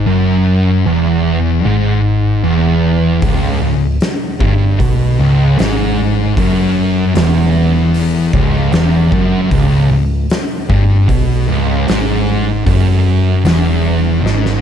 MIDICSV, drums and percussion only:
0, 0, Header, 1, 2, 480
1, 0, Start_track
1, 0, Key_signature, 4, "minor"
1, 0, Tempo, 787402
1, 40, Time_signature, 4, 2, 24, 8
1, 8907, End_track
2, 0, Start_track
2, 0, Title_t, "Drums"
2, 1963, Note_on_c, 9, 46, 57
2, 1965, Note_on_c, 9, 36, 108
2, 2024, Note_off_c, 9, 46, 0
2, 2026, Note_off_c, 9, 36, 0
2, 2442, Note_on_c, 9, 46, 54
2, 2451, Note_on_c, 9, 38, 112
2, 2503, Note_off_c, 9, 46, 0
2, 2512, Note_off_c, 9, 38, 0
2, 2685, Note_on_c, 9, 36, 107
2, 2746, Note_off_c, 9, 36, 0
2, 2926, Note_on_c, 9, 36, 104
2, 2929, Note_on_c, 9, 46, 56
2, 2987, Note_off_c, 9, 36, 0
2, 2990, Note_off_c, 9, 46, 0
2, 3406, Note_on_c, 9, 46, 55
2, 3415, Note_on_c, 9, 38, 109
2, 3467, Note_off_c, 9, 46, 0
2, 3476, Note_off_c, 9, 38, 0
2, 3884, Note_on_c, 9, 36, 105
2, 3886, Note_on_c, 9, 46, 61
2, 3945, Note_off_c, 9, 36, 0
2, 3947, Note_off_c, 9, 46, 0
2, 4361, Note_on_c, 9, 46, 63
2, 4370, Note_on_c, 9, 38, 111
2, 4422, Note_off_c, 9, 46, 0
2, 4431, Note_off_c, 9, 38, 0
2, 4842, Note_on_c, 9, 46, 57
2, 4903, Note_off_c, 9, 46, 0
2, 5080, Note_on_c, 9, 36, 104
2, 5141, Note_off_c, 9, 36, 0
2, 5318, Note_on_c, 9, 46, 53
2, 5327, Note_on_c, 9, 38, 102
2, 5379, Note_off_c, 9, 46, 0
2, 5388, Note_off_c, 9, 38, 0
2, 5560, Note_on_c, 9, 36, 102
2, 5621, Note_off_c, 9, 36, 0
2, 5800, Note_on_c, 9, 36, 105
2, 5802, Note_on_c, 9, 46, 56
2, 5861, Note_off_c, 9, 36, 0
2, 5863, Note_off_c, 9, 46, 0
2, 6279, Note_on_c, 9, 46, 54
2, 6288, Note_on_c, 9, 38, 111
2, 6340, Note_off_c, 9, 46, 0
2, 6349, Note_off_c, 9, 38, 0
2, 6520, Note_on_c, 9, 36, 102
2, 6581, Note_off_c, 9, 36, 0
2, 6760, Note_on_c, 9, 36, 101
2, 6761, Note_on_c, 9, 46, 57
2, 6821, Note_off_c, 9, 36, 0
2, 6822, Note_off_c, 9, 46, 0
2, 7243, Note_on_c, 9, 46, 55
2, 7252, Note_on_c, 9, 38, 108
2, 7304, Note_off_c, 9, 46, 0
2, 7313, Note_off_c, 9, 38, 0
2, 7721, Note_on_c, 9, 36, 106
2, 7726, Note_on_c, 9, 46, 57
2, 7782, Note_off_c, 9, 36, 0
2, 7787, Note_off_c, 9, 46, 0
2, 8200, Note_on_c, 9, 46, 58
2, 8209, Note_on_c, 9, 38, 118
2, 8261, Note_off_c, 9, 46, 0
2, 8270, Note_off_c, 9, 38, 0
2, 8693, Note_on_c, 9, 38, 60
2, 8754, Note_off_c, 9, 38, 0
2, 8811, Note_on_c, 9, 38, 54
2, 8872, Note_off_c, 9, 38, 0
2, 8907, End_track
0, 0, End_of_file